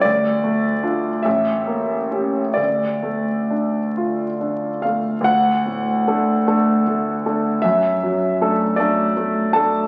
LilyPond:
<<
  \new Staff \with { instrumentName = "Grand piano" } { \time 6/8 \key d \minor \tempo 4. = 50 d''4. e''4. | d''2~ d''8 f''8 | \key d \major fis''2. | e''4. d''4 a''8 | }
  \new Staff \with { instrumentName = "Grand piano" } { \time 6/8 \key d \minor d,8 a8 <d' f'>8 a,,8 bes8 <cis' g'>8 | d,8 a8 d'8 f'8 d'8 a8 | \key d \major d,8 a,8 <a d' a'>8 <a d' a'>8 a8 <a d' a'>8 | fis,8 fis8 <a d' a'>8 <a d' a'>8 a8 <a d' a'>8 | }
>>